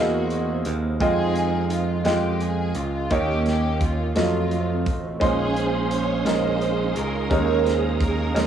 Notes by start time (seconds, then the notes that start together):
Already playing: E2 E3 A#3 C4 D#4 E4 F#4 G#4 C5 D#5
0.30 closed hi-hat
0.65 D#2, closed hi-hat
1.00 F2 G#3 C4 D#4 F4 G#4 D#5 G5, kick, closed hi-hat
1.36 closed hi-hat
1.70 F4, closed hi-hat
2.04 F2 G#3 F4 G4 D#5 G5, snare, closed hi-hat
2.41 G#4, closed hi-hat
2.75 C#2 F4, closed hi-hat
3.10 D#2 D#3 A#3 C#4 D#4 G4 C#5, kick, closed hi-hat
3.46 G4, snare, closed hi-hat
3.81 F4, kick, closed hi-hat
4.15 F2 F#3 A3 C4 F4 D#5, snare, closed hi-hat
4.51 closed hi-hat
4.86 A1, kick, closed hi-hat
5.20 A#1 A#2 G#3 C#4 D#4 G#4 C5 F5 C6 D#6, kick, closed hi-hat
5.56 closed hi-hat
5.91 C#5, closed hi-hat
6.25 A#1 G#3 C#4 D#4 G#4 A#4 C5, snare, closed hi-hat
6.61 closed hi-hat
6.96 C#2 A#4, closed hi-hat
7.30 D#2 D#3 G3 C#4 D#4 G#4 A#4 C#5 A#5, kick, closed hi-hat
7.36 G#3
7.65 C5, snare, closed hi-hat
8.01 A#4, kick, closed hi-hat
8.34 D#2 G3 C#4 D#4 G#4 A#4, snare, closed hi-hat
8.40 G#3